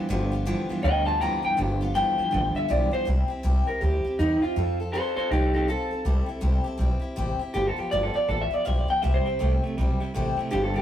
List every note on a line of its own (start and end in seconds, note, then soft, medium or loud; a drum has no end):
0.09 0.52 G1 medium
0.09 0.32 G2 medium
0.09 0.44 G2 medium
0.09 0.33 D3 medium
0.09 0.44 D3 medium
0.09 0.33 F3 loud
0.09 0.33 B3 loud
0.09 0.32 F4 medium
0.09 0.30 G4 loud
0.32 0.45 F3 medium
0.32 0.46 B3 medium
0.32 0.46 F4 medium
0.32 0.46 G4 medium
0.46 0.69 G2 medium
0.46 0.67 G2 medium
0.46 0.70 D3 medium
0.46 0.68 E3 loud
0.46 0.70 F3 loud
0.46 0.70 B3 medium
0.46 0.69 F4 medium
0.46 0.68 G4 loud
0.69 0.83 G2 medium
0.69 0.83 E3 medium
0.69 0.82 F3 medium
0.69 0.83 B3 medium
0.69 0.84 F4 medium
0.69 0.84 G4 medium
0.69 muted upright bass stroke medium
0.83 1.26 D2 medium
0.83 1.18 G2 medium
0.83 1.19 D3 medium
0.83 1.06 F3 medium
0.83 1.07 B3 medium
0.83 1.06 F4 medium
0.83 1.05 G4 medium
0.83 1.05 D#5 medium
0.83 1.06 G5 medium
1.06 1.21 F3 soft
1.06 1.21 B3 medium
1.06 1.21 F4 medium
1.06 1.21 G4 medium
1.06 1.20 F5 medium
1.06 1.21 A5 loud
1.20 1.41 G2 medium
1.20 1.44 G2 medium
1.20 1.44 D3 medium
1.20 1.42 E3 medium
1.20 1.44 F3 medium
1.20 1.43 B3 medium
1.20 1.42 F4 medium
1.20 1.41 G4 medium
1.20 1.42 G5 medium
1.20 1.44 A#5 loud
1.42 1.57 G2 medium
1.42 1.57 E3 medium
1.42 1.57 F3 soft
1.42 1.57 B3 medium
1.42 1.57 F4 medium
1.42 1.58 G4 medium
1.42 1.58 G5 loud
1.42 muted upright bass stroke medium
1.57 2.01 G1 medium
1.57 1.81 G2 medium
1.57 1.92 G2 medium
1.57 1.81 D3 medium
1.57 1.93 D3 medium
1.57 1.81 F3 medium
1.57 1.81 B3 medium
1.57 1.81 F4 medium
1.57 1.80 G4 medium
1.81 1.95 F3 medium
1.81 1.95 B3 medium
1.81 1.95 F4 medium
1.81 1.95 G4 medium
1.95 2.16 G2 medium
1.95 2.18 G2 medium
1.95 2.18 D3 medium
1.95 2.16 E3 loud
1.95 2.19 F3 medium
1.95 2.19 B3 medium
1.95 2.18 F4 medium
1.95 2.17 G4 medium
1.95 2.54 G5 loud
2.18 2.31 G2 medium
2.18 2.31 E3 medium
2.18 2.31 B3 soft
2.18 2.33 F4 medium
2.18 2.33 G4 medium
2.18 muted upright bass stroke medium
2.22 2.30 F3 soft
2.31 2.53 A1 medium
2.31 2.67 G2 medium
2.31 2.67 D3 medium
2.31 2.55 F3 medium
2.31 2.55 B3 medium
2.31 2.55 F4 medium
2.31 2.54 G4 medium
2.55 2.68 F3 soft
2.55 2.69 B3 soft
2.55 2.69 F4 medium
2.55 2.70 G4 medium
2.55 2.70 E5 medium
2.55 muted upright bass stroke medium
2.68 2.90 B1 medium
2.68 2.92 G2 medium
2.68 2.91 G2 medium
2.68 2.92 D3 medium
2.68 2.91 E3 medium
2.68 2.93 F3 medium
2.68 2.92 B3 medium
2.68 2.91 F4 medium
2.68 2.90 G4 medium
2.68 2.92 D5 medium
2.91 3.06 G2 medium
2.91 3.06 E3 medium
2.91 3.06 F3 soft
2.91 3.07 B3 medium
2.91 3.07 F4 medium
2.91 3.06 G4 medium
2.91 3.07 C5 loud
2.91 muted upright bass stroke medium
3.05 3.23 C2 medium
3.05 3.29 C3 medium
3.05 3.30 G3 medium
3.05 3.30 C4 medium
3.05 3.29 E4 medium
3.05 3.27 G4 medium
3.28 3.43 C4 medium
3.28 3.44 E4 medium
3.28 3.43 G4 medium
3.28 muted upright bass stroke medium
3.43 3.64 C2 medium
3.43 3.67 C3 loud
3.43 3.67 G3 medium
3.43 3.67 C4 medium
3.43 3.67 E4 loud
3.43 3.66 G4 medium
3.67 3.81 C4 soft
3.67 3.82 E4 medium
3.67 3.81 G4 medium
3.67 3.81 A#4 medium
3.67 muted upright bass stroke medium
3.81 4.01 D2 medium
3.81 4.04 G3 medium
3.81 4.05 C4 medium
3.81 4.05 E4 medium
3.81 4.17 G4 medium
3.81 4.03 G4 medium
4.05 4.19 C4 soft
4.05 4.19 E4 soft
4.05 4.19 G4 medium
4.05 muted upright bass stroke medium
4.19 4.38 E2 medium
4.19 4.42 C3 medium
4.19 4.42 G3 medium
4.19 4.43 C4 medium
4.19 4.41 D#4 medium
4.19 4.43 E4 medium
4.19 4.41 G4 medium
4.42 4.56 C4 soft
4.42 4.57 E4 medium
4.42 4.78 F4 medium
4.42 4.56 G4 medium
4.42 muted upright bass stroke medium
4.56 4.99 F2 medium
4.56 4.79 F3 medium
4.56 4.79 C4 medium
4.56 4.80 F4 medium
4.56 4.79 A4 medium
4.80 4.94 C4 soft
4.80 4.94 F4 medium
4.80 4.94 A4 medium
4.92 5.17 F3 medium
4.92 5.17 C4 medium
4.92 5.17 F4 medium
4.92 5.15 A4 medium
4.92 5.16 C5 medium
5.16 5.32 C4 soft
5.16 5.32 F4 medium
5.16 5.30 A4 medium
5.16 5.31 A4 medium
5.16 5.30 C5 medium
5.16 muted upright bass stroke medium
5.30 5.73 C2 medium
5.30 5.54 F3 medium
5.30 5.55 C4 medium
5.30 5.52 D#4 medium
5.30 5.55 F4 medium
5.30 5.53 G4 medium
5.30 5.53 A4 medium
5.54 5.67 D#4 medium
5.54 5.69 F4 medium
5.54 5.68 G4 medium
5.54 5.68 A4 medium
5.58 5.68 C4 soft
5.68 5.91 F3 medium
5.68 5.91 C4 medium
5.68 5.91 F4 medium
5.68 6.77 A4 loud
5.68 5.90 A4 medium
5.91 6.05 C4 soft
5.91 6.06 F4 soft
5.91 6.05 A4 soft
5.91 muted upright bass stroke medium
6.05 6.21 C2 medium
6.05 6.28 C3 medium
6.05 6.28 G3 medium
6.05 6.29 C4 medium
6.05 6.27 E4 medium
6.05 6.25 G4 medium
6.26 6.41 C4 soft
6.26 6.41 E4 medium
6.26 6.42 G4 medium
6.26 muted upright bass stroke medium
6.41 6.62 C2 medium
6.41 6.65 C3 medium
6.41 6.65 G3 medium
6.41 6.65 C4 medium
6.41 6.65 E4 medium
6.41 6.63 G4 medium
6.64 6.78 C4 soft
6.64 6.79 E4 medium
6.64 6.79 G4 medium
6.64 muted upright bass stroke medium
6.78 6.99 B1 medium
6.78 7.02 G3 medium
6.78 7.02 C4 medium
6.78 7.00 E4 medium
6.78 6.98 G4 medium
7.00 7.16 E4 medium
7.00 7.16 G4 medium
7.00 muted upright bass stroke medium
7.04 7.16 C4 soft
7.16 7.37 A1 medium
7.16 7.39 C3 medium
7.16 7.40 G3 medium
7.16 7.40 C4 medium
7.16 7.40 E4 loud
7.16 7.38 G4 medium
7.39 7.55 C4 soft
7.39 7.55 E4 medium
7.39 7.54 G4 medium
7.39 muted upright bass stroke medium
7.54 7.71 G1 medium
7.54 7.77 G2 medium
7.54 7.77 D3 medium
7.54 7.77 F3 medium
7.54 7.77 B3 medium
7.54 7.77 F4 medium
7.54 7.67 G4 loud
7.54 7.75 G4 medium
7.67 7.79 A4 medium
7.76 7.91 F3 soft
7.76 7.92 B3 soft
7.76 7.92 F4 medium
7.76 7.91 G4 medium
7.76 muted upright bass stroke medium
7.91 8.12 G1 medium
7.91 8.14 G2 medium
7.91 8.15 D3 medium
7.91 8.15 F3 medium
7.91 8.15 B3 medium
7.91 8.14 F4 medium
7.91 8.13 G4 medium
7.91 8.03 D5 medium
8.03 8.16 A4 medium
8.14 8.27 F3 soft
8.14 8.28 B3 soft
8.14 8.29 F4 soft
8.14 8.28 G4 medium
8.14 8.28 D5 medium
8.14 muted upright bass stroke medium
8.28 8.48 A1 medium
8.28 8.51 F3 medium
8.28 8.52 B3 medium
8.28 8.51 F4 medium
8.28 8.50 G4 medium
8.28 8.41 A4 medium
8.41 8.54 E5 medium
8.51 8.65 F3 soft
8.51 8.65 B3 soft
8.51 8.66 F4 soft
8.51 8.66 G4 medium
8.51 8.65 D5 medium
8.51 muted upright bass stroke medium
8.65 8.86 B1 medium
8.65 8.88 G2 medium
8.65 8.89 D3 medium
8.65 8.89 F3 medium
8.65 8.89 B3 medium
8.65 8.87 F4 medium
8.65 8.87 G4 medium
8.65 8.78 E5 medium
8.78 8.90 D5 medium
8.88 9.03 F3 soft
8.88 9.04 B3 soft
8.88 9.03 F4 medium
8.88 9.03 G4 medium
8.88 9.02 G5 medium
8.88 muted upright bass stroke medium
9.02 9.20 C2 medium
9.02 9.26 C3 medium
9.02 9.24 C3 medium
9.02 9.26 G3 medium
9.02 9.24 G3 medium
9.02 9.27 C4 medium
9.02 9.26 E4 medium
9.02 9.24 G4 medium
9.02 9.15 E5 medium
9.14 9.51 C5 medium
9.25 9.38 C3 medium
9.25 9.39 G3 medium
9.25 9.40 E4 soft
9.25 9.40 G4 medium
9.25 muted upright bass stroke medium
9.29 9.39 C4 soft
9.39 9.61 C2 medium
9.39 9.63 C3 medium
9.39 9.61 C3 medium
9.39 9.63 G3 medium
9.39 9.61 A3 loud
9.39 9.63 C4 medium
9.39 9.64 E4 medium
9.39 9.63 G4 medium
9.63 9.76 C3 medium
9.63 9.76 A3 medium
9.63 9.78 C4 soft
9.63 9.79 E4 soft
9.63 9.78 G4 medium
9.63 muted upright bass stroke medium
9.77 9.98 B1 medium
9.77 9.98 C3 medium
9.77 9.98 G3 loud
9.77 10.01 G3 medium
9.77 10.01 C4 medium
9.77 10.01 E4 medium
9.77 9.99 G4 medium
10.00 10.13 C3 medium
10.00 10.14 G3 medium
10.00 10.14 C4 soft
10.00 10.15 E4 medium
10.00 10.15 G4 medium
10.00 muted upright bass stroke medium
10.14 10.35 A1 medium
10.14 10.35 C3 medium
10.14 10.38 C3 medium
10.14 10.38 G3 medium
10.14 10.35 A3 medium
10.14 10.38 C4 medium
10.14 10.38 E4 loud
10.14 10.35 G4 loud
10.37 10.50 C3 medium
10.37 10.51 A3 medium
10.37 10.52 C4 medium
10.37 10.52 E4 medium
10.37 10.52 G4 medium
10.37 muted upright bass stroke medium
10.51 10.82 G1 medium
10.51 10.74 G2 medium
10.51 10.73 G2 medium
10.51 10.74 D3 medium
10.51 10.73 D3 medium
10.51 10.75 F3 medium
10.51 10.75 B3 medium
10.51 10.74 F4 medium
10.51 10.63 G4 loud
10.51 10.73 G4 medium
10.64 10.76 A4 medium
10.74 10.82 G2 medium
10.74 10.82 D3 medium
10.74 10.82 F3 soft
10.74 10.82 B3 medium
10.74 10.82 F4 medium
10.74 10.82 G4 medium